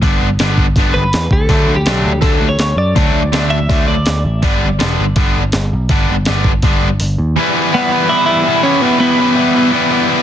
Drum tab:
HH |o-o-o-o-|o-o-o-o-|o-o-o-o-|o-o-o-o-|
SD |--o---o-|--o---o-|--o---o-|--o---o-|
BD |o--oo--o|o---o---|o---o---|o---o---|

HH |o-o-o-o-|--------|--------|
SD |--o-----|--------|--------|
BD |o--oo---|--------|--------|